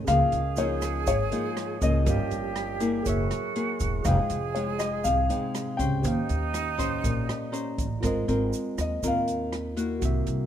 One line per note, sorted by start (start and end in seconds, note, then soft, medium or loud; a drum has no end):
0.05 0.19 C#2 loud
0.05 1.04 C#3 soft
0.05 0.39 F3 soft
0.05 0.40 A#3 medium
0.05 0.40 D#4 soft
0.05 1.28 G#4 soft
0.05 2.02 G#4 loud
0.05 1.29 A#4 soft
0.05 0.59 F5 loud
0.05 kick medium
0.05 cross-stick medium
0.05 closed hi-hat medium
0.05 shaker medium
0.09 1.30 D#5 soft
0.09 1.31 F5 medium
0.32 1.03 C#2 medium
0.32 closed hi-hat soft
0.32 shaker soft
0.56 1.06 F3 medium
0.56 1.07 A#3 medium
0.56 1.07 D#4 medium
0.56 1.06 C#5 medium
0.56 closed hi-hat soft
0.56 shaker medium
0.82 cross-stick medium
0.82 closed hi-hat soft
0.82 shaker medium
1.07 1.30 G#1 medium
1.07 2.04 G#2 medium
1.07 1.84 C#5 medium
1.07 kick medium
1.07 closed hi-hat medium
1.07 shaker medium
1.30 1.78 F3 medium
1.30 1.78 A#3 medium
1.30 1.78 D#4 medium
1.30 2.06 G#4 soft
1.30 2.05 A#4 soft
1.30 2.06 D#5 soft
1.30 2.07 F5 soft
1.30 closed hi-hat soft
1.30 shaker soft
1.57 cross-stick medium
1.57 closed hi-hat soft
1.81 2.05 C#2 medium
1.81 2.77 F3 soft
1.81 2.77 A#3 medium
1.81 2.77 C#4 medium
1.81 2.78 D#5 medium
1.81 kick medium
1.81 closed hi-hat soft
1.81 shaker medium
2.04 2.18 G1 loud
2.04 3.03 G2 medium
2.04 3.03 G4 medium
2.04 3.09 G4 medium
2.04 3.04 A#4 soft
2.04 3.05 C#5 soft
2.04 kick medium
2.04 closed hi-hat medium
2.04 shaker medium
2.10 3.06 F5 medium
2.31 3.02 G1 medium
2.31 closed hi-hat soft
2.31 shaker soft
2.56 cross-stick medium
2.56 closed hi-hat soft
2.80 3.51 A#3 medium
2.80 3.52 E4 medium
2.80 3.52 G#4 medium
2.80 closed hi-hat soft
2.80 shaker medium
3.03 3.29 F#1 medium
3.03 4.03 F#3 medium
3.03 4.01 G#4 medium
3.03 4.03 A#4 medium
3.03 4.04 C#5 medium
3.03 kick soft
3.03 closed hi-hat medium
3.03 shaker medium
3.07 4.08 F#4 loud
3.07 4.05 E5 medium
3.31 cross-stick medium
3.31 closed hi-hat soft
3.31 shaker soft
3.55 4.01 A#3 medium
3.55 4.01 E4 medium
3.55 4.02 G#4 medium
3.55 closed hi-hat soft
3.80 4.04 E1 medium
3.80 kick medium
3.80 closed hi-hat soft
3.80 shaker medium
4.03 4.17 F1 loud
4.03 5.02 F3 soft
4.03 4.37 G#3 medium
4.03 4.37 D#4 soft
4.03 5.26 G#4 medium
4.03 5.78 G#4 loud
4.03 5.27 C5 soft
4.03 4.51 F5 medium
4.03 kick medium
4.03 cross-stick medium
4.03 closed hi-hat medium
4.03 shaker medium
4.07 5.28 D#5 soft
4.07 5.29 G5 medium
4.30 5.01 F1 medium
4.30 closed hi-hat soft
4.30 shaker soft
4.55 5.05 G#3 medium
4.55 5.05 D#4 medium
4.55 4.80 C#5 medium
4.55 closed hi-hat soft
4.79 5.02 D#5 medium
4.79 cross-stick medium
4.79 closed hi-hat soft
4.79 shaker medium
5.04 5.28 C2 medium
5.04 6.02 C3 medium
5.04 5.81 F5 loud
5.04 kick medium
5.04 closed hi-hat medium
5.04 shaker medium
5.29 5.75 G#3 medium
5.29 5.75 D#4 medium
5.29 6.02 C5 soft
5.29 6.05 D#5 soft
5.29 6.05 G5 soft
5.29 closed hi-hat soft
5.29 shaker soft
5.55 cross-stick medium
5.55 closed hi-hat soft
5.55 shaker medium
5.77 6.02 C#2 medium
5.77 6.74 C#4 medium
5.77 6.75 G4 medium
5.77 6.75 C5 medium
5.77 7.48 G5 medium
5.77 kick medium
5.77 closed hi-hat soft
5.77 shaker medium
6.02 6.16 D#2 loud
6.02 7.00 D#3 soft
6.02 7.75 D#4 loud
6.02 7.98 G4 soft
6.02 7.99 C5 soft
6.02 kick medium
6.02 closed hi-hat medium
6.02 shaker medium
6.08 8.01 F5 medium
6.29 7.00 D#2 medium
6.29 closed hi-hat soft
6.29 shaker soft
6.54 cross-stick medium
6.54 closed hi-hat soft
6.54 shaker medium
6.78 7.49 C#4 medium
6.78 7.49 G4 medium
6.78 7.49 C5 medium
6.78 kick medium
6.78 closed hi-hat soft
6.78 shaker medium
7.04 7.27 A#1 medium
7.04 8.00 A#2 medium
7.04 kick medium
7.04 closed hi-hat medium
7.04 shaker medium
7.28 7.51 D#5 medium
7.28 cross-stick medium
7.28 closed hi-hat soft
7.28 shaker soft
7.52 7.85 C#4 medium
7.52 7.85 G4 medium
7.52 7.85 C5 medium
7.52 7.99 A#5 medium
7.52 closed hi-hat soft
7.52 shaker medium
7.78 8.01 A1 medium
7.78 kick medium
7.78 closed hi-hat soft
7.78 shaker medium
8.01 8.26 G#1 medium
8.01 9.00 G#3 soft
8.01 8.24 C4 medium
8.01 9.97 F4 medium
8.01 8.24 F4 medium
8.01 9.97 A#4 medium
8.01 8.24 A#4 medium
8.01 kick medium
8.01 cross-stick medium
8.01 closed hi-hat medium
8.01 shaker medium
8.05 9.99 C5 medium
8.05 10.00 D#5 medium
8.28 8.51 G#1 medium
8.28 8.98 C4 medium
8.28 8.99 F4 medium
8.28 8.99 A#4 medium
8.28 closed hi-hat soft
8.28 shaker soft
8.53 closed hi-hat soft
8.53 shaker medium
8.78 9.01 D#2 medium
8.78 9.03 D#5 medium
8.78 cross-stick medium
8.78 closed hi-hat soft
8.78 shaker medium
9.03 9.98 D#2 medium
9.03 10.00 D#3 medium
9.03 9.73 C4 soft
9.03 9.74 F4 medium
9.03 9.74 A#4 medium
9.03 kick medium
9.03 closed hi-hat soft
9.03 shaker medium
9.08 9.51 F5 medium
9.28 closed hi-hat soft
9.28 shaker soft
9.53 cross-stick medium
9.53 closed hi-hat soft
9.76 10.46 A#3 medium
9.76 10.46 E4 medium
9.76 10.46 F#4 medium
9.76 closed hi-hat soft
9.76 shaker medium
9.99 10.25 C2 medium
9.99 10.46 C3 soft
9.99 10.46 F#4 medium
9.99 10.46 A#4 soft
9.99 kick medium
9.99 closed hi-hat medium
9.99 shaker soft
10.05 10.46 E5 medium
10.27 10.46 C2 medium
10.27 closed hi-hat soft
10.27 shaker soft